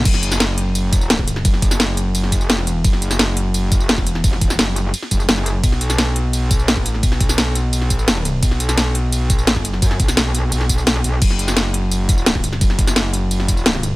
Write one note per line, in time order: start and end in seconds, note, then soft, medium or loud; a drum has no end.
0.05 1.44 F#1 medium
0.05 kick loud
0.05 closed hi-hat medium
0.05 crash loud
0.05 ride medium
0.05 tambourine medium
0.14 snare soft
0.23 closed hi-hat loud
0.23 tambourine soft
0.32 snare medium
0.32 tambourine medium
0.40 snare loud
0.40 closed hi-hat medium
0.40 ride medium
0.40 tambourine medium
0.58 closed hi-hat loud
0.75 closed hi-hat medium
0.75 ride medium
0.75 tambourine soft
0.93 kick loud
0.93 closed hi-hat loud
0.93 tambourine medium
1.01 tambourine soft
1.10 snare loud
1.10 closed hi-hat medium
1.10 ride medium
1.10 tambourine medium
1.19 kick medium
1.19 snare soft
1.27 closed hi-hat loud
1.27 tambourine soft
1.36 snare soft
1.45 2.42 F#1 medium
1.45 kick loud
1.45 closed hi-hat medium
1.45 ride medium
1.45 tambourine soft
1.54 snare soft
1.62 kick loud
1.62 closed hi-hat medium
1.62 tambourine soft
1.71 snare soft
1.71 tambourine medium
1.80 snare loud
1.80 closed hi-hat medium
1.80 ride medium
1.80 tambourine soft
1.97 closed hi-hat medium
1.97 tambourine soft
2.15 closed hi-hat medium
2.15 ride medium
2.15 tambourine soft
2.23 snare soft
2.32 kick medium
2.32 closed hi-hat medium
2.32 tambourine medium
2.41 2.70 F1 medium
2.41 tambourine soft
2.50 snare loud
2.50 closed hi-hat medium
2.50 ride medium
2.50 tambourine medium
2.58 snare soft
2.67 2.83 E1 medium
2.67 closed hi-hat loud
2.67 tambourine soft
2.84 3.81 F#1 medium
2.84 kick loud
2.84 closed hi-hat medium
2.84 ride medium
2.84 tambourine medium
2.93 snare soft
3.02 closed hi-hat loud
3.02 tambourine soft
3.11 snare soft
3.11 tambourine medium
3.19 snare loud
3.19 closed hi-hat medium
3.19 ride medium
3.19 tambourine soft
3.37 closed hi-hat medium
3.54 closed hi-hat medium
3.54 ride medium
3.54 tambourine soft
3.72 kick loud
3.72 closed hi-hat medium
3.72 tambourine medium
3.80 4.09 F1 medium
3.80 tambourine soft
3.89 snare loud
3.89 closed hi-hat medium
3.89 ride medium
3.89 tambourine medium
3.98 kick medium
3.98 snare soft
4.07 4.23 E1 medium
4.07 closed hi-hat loud
4.07 tambourine soft
4.15 snare soft
4.24 4.57 E1 loud
4.24 kick loud
4.24 closed hi-hat medium
4.24 ride medium
4.24 tambourine soft
4.33 snare soft
4.41 kick loud
4.41 closed hi-hat medium
4.41 tambourine soft
4.50 snare soft
4.50 tambourine medium
4.59 4.92 F#1 loud
4.59 snare loud
4.59 closed hi-hat medium
4.59 ride medium
4.59 tambourine medium
4.76 closed hi-hat medium
4.76 tambourine soft
4.94 closed hi-hat medium
4.94 ride medium
4.94 tambourine soft
5.02 snare soft
5.11 5.27 F#1 medium
5.11 kick medium
5.11 closed hi-hat medium
5.11 tambourine medium
5.20 tambourine soft
5.29 5.62 F#1 medium
5.29 snare loud
5.29 closed hi-hat medium
5.29 ride medium
5.29 tambourine medium
5.37 snare soft
5.46 closed hi-hat medium
5.46 tambourine soft
5.64 6.61 B1 medium
5.64 kick loud
5.64 closed hi-hat medium
5.64 ride medium
5.64 tambourine medium
5.72 snare soft
5.81 closed hi-hat medium
5.81 tambourine soft
5.90 snare soft
5.90 tambourine medium
5.98 snare loud
5.98 closed hi-hat medium
5.98 ride medium
5.98 tambourine soft
6.16 closed hi-hat medium
6.33 closed hi-hat medium
6.33 ride medium
6.33 tambourine medium
6.51 kick loud
6.51 closed hi-hat medium
6.51 tambourine medium
6.59 6.89 A#1 medium
6.59 tambourine soft
6.68 snare loud
6.68 closed hi-hat medium
6.68 ride medium
6.68 tambourine medium
6.77 kick medium
6.77 snare soft
6.86 7.02 A1 medium
6.86 closed hi-hat medium
6.86 tambourine soft
6.94 snare soft
7.03 8.41 B1 loud
7.03 kick loud
7.03 closed hi-hat medium
7.03 ride medium
7.03 tambourine medium
7.12 snare soft
7.21 kick loud
7.21 closed hi-hat medium
7.21 tambourine soft
7.29 snare soft
7.29 tambourine medium
7.38 snare loud
7.38 closed hi-hat medium
7.38 ride medium
7.38 tambourine medium
7.55 closed hi-hat loud
7.55 tambourine soft
7.73 closed hi-hat medium
7.73 ride medium
7.73 tambourine medium
7.82 snare soft
7.90 kick medium
7.90 closed hi-hat medium
7.90 tambourine medium
7.99 tambourine soft
8.08 snare loud
8.08 closed hi-hat medium
8.08 ride medium
8.08 tambourine medium
8.16 snare soft
8.25 closed hi-hat medium
8.25 tambourine soft
8.43 9.43 B1 medium
8.43 kick loud
8.43 closed hi-hat medium
8.43 ride medium
8.43 tambourine medium
8.51 snare soft
8.60 closed hi-hat loud
8.60 tambourine soft
8.69 snare soft
8.69 tambourine medium
8.78 snare loud
8.78 closed hi-hat medium
8.78 ride medium
8.78 tambourine medium
8.95 closed hi-hat loud
9.12 closed hi-hat medium
9.12 ride medium
9.12 tambourine medium
9.30 kick loud
9.30 closed hi-hat loud
9.30 tambourine medium
9.39 tambourine soft
9.43 9.65 A1 medium
9.47 snare loud
9.47 closed hi-hat medium
9.47 ride medium
9.47 tambourine medium
9.56 kick medium
9.56 snare soft
9.65 9.81 G1 medium
9.65 closed hi-hat loud
9.65 tambourine soft
9.73 snare soft
9.82 9.98 F#2 medium
9.82 kick loud
9.82 closed hi-hat medium
9.82 ride medium
9.82 tambourine medium
9.91 snare soft
10.00 10.51 B1 medium
10.00 kick loud
10.00 closed hi-hat loud
10.00 tambourine soft
10.08 snare medium
10.08 tambourine medium
10.17 snare loud
10.17 closed hi-hat medium
10.17 ride medium
10.17 tambourine medium
10.35 closed hi-hat loud
10.35 tambourine soft
10.52 11.03 B1 loud
10.52 closed hi-hat medium
10.52 ride medium
10.52 tambourine medium
10.61 snare soft
10.69 kick medium
10.69 closed hi-hat loud
10.69 tambourine medium
10.78 tambourine soft
10.87 snare loud
10.87 closed hi-hat medium
10.87 ride medium
10.87 tambourine medium
10.96 snare soft
11.04 11.20 B1 loud
11.04 closed hi-hat loud
11.04 tambourine soft
11.22 12.60 F#1 medium
11.22 kick loud
11.22 closed hi-hat medium
11.22 crash medium
11.22 ride medium
11.22 tambourine medium
11.30 snare soft
11.39 closed hi-hat loud
11.39 tambourine soft
11.48 snare medium
11.48 tambourine medium
11.57 snare loud
11.57 closed hi-hat medium
11.57 ride medium
11.57 tambourine medium
11.74 closed hi-hat loud
11.91 closed hi-hat medium
11.91 ride medium
11.91 tambourine medium
12.09 kick loud
12.09 closed hi-hat loud
12.09 tambourine medium
12.18 tambourine soft
12.26 snare loud
12.26 closed hi-hat medium
12.26 ride medium
12.26 tambourine medium
12.35 kick medium
12.35 snare soft
12.44 closed hi-hat loud
12.44 tambourine soft
12.52 snare soft
12.61 13.96 F#1 medium
12.61 kick loud
12.61 closed hi-hat medium
12.61 ride medium
12.61 tambourine medium
12.70 snare soft
12.79 kick loud
12.79 closed hi-hat loud
12.79 tambourine soft
12.87 snare medium
12.87 tambourine medium
12.96 snare loud
12.96 closed hi-hat medium
12.96 ride medium
12.96 tambourine soft
13.14 closed hi-hat loud
13.14 tambourine soft
13.31 closed hi-hat medium
13.31 ride medium
13.31 tambourine medium
13.40 snare soft
13.48 kick medium
13.48 closed hi-hat loud
13.48 tambourine medium
13.57 tambourine soft
13.66 snare loud
13.66 closed hi-hat medium
13.66 ride medium
13.66 tambourine medium
13.75 snare soft
13.83 closed hi-hat loud
13.83 tambourine soft